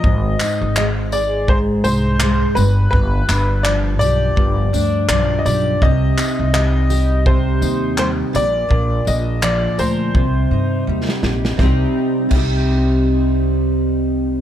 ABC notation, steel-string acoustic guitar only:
X:1
M:4/4
L:1/8
Q:"Swing 16ths" 1/4=83
K:Cm
V:1 name="Steel-string acoustic guitar" clef=bass
A,, E A, A A,, E A, G,, | G,, D F, G G,, D F, G | C, E G, G C, E G, B,, | B,, D F, B C, E G, G |
[C,G,CEG] z [C,G,CEG]6 |]